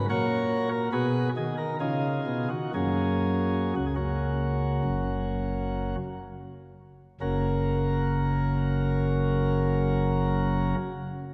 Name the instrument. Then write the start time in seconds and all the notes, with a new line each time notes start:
pipe organ
0.10 A#2 F#4 A#4 C#5
0.71 A#4
0.92 B2 F#4 G#4 B4
1.36 D#3 G#4
1.58 A#4
1.80 C#3 D#4 F4 G#4
2.27 B2
2.50 D#3 F#4
2.74 F#2 F#3 A#3 C#4 G#4
3.76 C#2 C#3 F#4
3.86 G#4
3.96 A#3 C#4 F#4
4.84 F#1 F#2
7.21 F#1 F#2 C#3 A#3 C#4 F#4 A#4